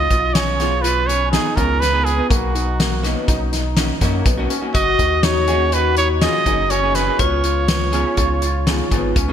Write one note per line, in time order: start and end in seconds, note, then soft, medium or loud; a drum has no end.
0.00 0.36 D#5 medium
0.11 1.38 B1 medium
0.11 0.31 F4 medium
0.11 kick medium
0.11 closed hi-hat medium
0.34 0.56 C#4 medium
0.34 0.83 C#5 medium
0.34 snare loud
0.34 closed hi-hat medium
0.59 1.07 B3 medium
0.59 1.08 D#4 soft
0.59 0.80 F4 medium
0.59 1.08 F4 medium
0.59 1.08 G#4 medium
0.59 snare soft
0.59 closed hi-hat medium
0.82 1.04 F4 medium
0.82 1.08 B4 medium
0.82 closed hi-hat medium
1.07 1.29 C#4 medium
1.07 1.31 C#5 loud
1.07 closed hi-hat medium
1.31 1.49 B3 medium
1.31 1.54 D#4 medium
1.31 1.49 D#4 medium
1.31 1.49 F4 medium
1.31 1.57 G#4 medium
1.31 1.49 G#4 medium
1.31 snare medium
1.31 closed hi-hat medium
1.56 2.21 C#2 loud
1.56 1.81 B3 medium
1.56 1.78 C#4 medium
1.56 1.81 D#4 medium
1.56 1.81 F4 medium
1.56 1.81 G#4 medium
1.56 1.82 A#4 medium
1.56 kick medium
1.56 closed hi-hat soft
1.80 2.23 B3 medium
1.80 2.06 B4 medium
1.80 snare soft
1.80 closed hi-hat medium
1.93 2.09 B3 medium
1.93 2.09 D#4 medium
1.93 2.10 F4 medium
1.93 2.10 G#4 medium
2.05 2.29 G#4 medium
2.05 closed hi-hat soft
2.17 2.30 B3 medium
2.17 2.30 D#4 medium
2.17 2.30 F4 medium
2.17 2.30 B4 medium
2.30 3.16 B1 loud
2.30 2.51 A#3 medium
2.30 3.24 F#4 medium
2.30 kick medium
2.30 closed hi-hat medium
2.54 2.75 D#4 medium
2.54 closed hi-hat medium
2.79 3.00 A#3 medium
2.79 snare loud
2.79 closed hi-hat medium
3.03 3.52 A#3 medium
3.03 3.24 B3 medium
3.03 3.52 C#4 medium
3.03 3.52 D#4 medium
3.03 3.52 F#4 loud
3.03 snare soft
3.03 closed hi-hat medium
3.27 3.92 B1 medium
3.27 3.49 D#4 medium
3.27 kick medium
3.27 snare soft
3.27 closed hi-hat medium
3.52 3.94 D#4 medium
3.52 snare soft
3.52 closed hi-hat medium
3.77 3.93 A#3 medium
3.77 3.93 C#4 medium
3.77 3.93 D#4 medium
3.77 3.93 F#4 medium
3.77 snare loud
3.77 closed hi-hat medium
4.01 4.23 F#2 medium
4.01 4.22 A#3 medium
4.01 4.26 A#3 medium
4.01 4.26 C#4 medium
4.01 4.26 D#4 medium
4.01 4.26 F#4 loud
4.01 kick medium
4.01 snare soft
4.01 closed hi-hat medium
4.25 4.47 B1 loud
4.25 4.47 B3 medium
4.25 kick loud
4.25 closed hi-hat medium
4.37 4.54 A#3 medium
4.37 4.54 C#4 medium
4.37 4.54 D#4 medium
4.37 4.54 F#4 medium
4.50 4.71 C#4 medium
4.50 closed hi-hat medium
4.62 4.74 A#3 medium
4.62 4.74 C#4 medium
4.62 4.74 D#4 medium
4.62 4.75 F#4 medium
4.73 4.96 F#1 medium
4.73 4.95 F#4 medium
4.73 7.27 F#4 medium
4.73 5.25 D#5 loud
4.73 kick loud
4.73 closed hi-hat medium
4.99 6.27 D#2 medium
4.99 5.20 F#4 medium
4.99 kick medium
4.99 closed hi-hat medium
5.23 5.45 D#4 medium
5.23 5.75 C#5 medium
5.23 snare loud
5.23 closed hi-hat medium
5.48 5.96 A#3 medium
5.48 5.96 C#4 medium
5.48 5.97 D#4 medium
5.48 5.69 F#4 medium
5.48 5.97 G#4 medium
5.48 closed hi-hat medium
5.72 5.94 F#4 medium
5.72 5.97 B4 medium
5.72 closed hi-hat medium
5.97 6.18 D#4 medium
5.97 6.09 C#5 medium
5.97 closed hi-hat medium
6.21 6.38 A#3 medium
6.21 6.38 C#4 medium
6.21 6.38 D#4 medium
6.21 6.43 F4 medium
6.21 6.38 G#4 medium
6.21 6.72 D#5 medium
6.21 snare loud
6.21 closed hi-hat medium
6.45 7.10 F#1 loud
6.45 6.70 A#3 medium
6.45 6.70 C#4 medium
6.45 6.70 D#4 medium
6.45 6.67 D#4 medium
6.45 6.70 G#4 medium
6.45 kick medium
6.45 closed hi-hat medium
6.70 7.13 C#4 medium
6.70 6.97 C#5 medium
6.70 closed hi-hat medium
6.83 6.99 A#3 medium
6.83 6.99 C#4 medium
6.83 6.99 D#4 medium
6.83 6.99 G#4 medium
6.95 7.22 B4 medium
6.95 snare soft
6.95 closed hi-hat medium
7.07 7.20 A#3 medium
7.07 7.20 C#4 soft
7.07 7.20 D#4 medium
7.07 7.20 G#4 medium
7.19 8.05 C#2 medium
7.19 7.41 B3 medium
7.19 9.33 F4 medium
7.19 9.16 C#5 medium
7.19 kick medium
7.19 closed hi-hat medium
7.44 7.65 F4 medium
7.44 closed hi-hat medium
7.68 7.90 B3 medium
7.68 snare loud
7.68 closed hi-hat medium
7.92 8.42 B3 medium
7.92 8.14 C#4 medium
7.92 8.42 D#4 medium
7.92 8.42 F4 medium
7.92 8.42 G#4 loud
7.92 closed hi-hat medium
8.17 8.82 C#2 medium
8.17 8.39 F4 medium
8.17 kick medium
8.17 closed hi-hat medium
8.42 8.84 F4 medium
8.42 closed hi-hat medium
8.66 8.83 B3 medium
8.66 8.83 D#4 medium
8.66 8.83 F4 medium
8.66 8.83 G#4 medium
8.66 snare medium
8.66 closed hi-hat medium
8.91 9.13 G#1 medium
8.91 9.13 B3 medium
8.91 9.16 B3 medium
8.91 9.16 D#4 medium
8.91 9.16 F4 medium
8.91 9.16 G#4 medium
8.91 kick medium
8.91 closed hi-hat medium
9.16 9.33 C#2 medium
9.16 9.33 C#4 medium
9.16 kick loud
9.16 closed hi-hat medium
9.28 9.33 B3 medium
9.28 9.33 D#4 medium
9.28 9.33 F4 medium
9.28 9.33 G#4 medium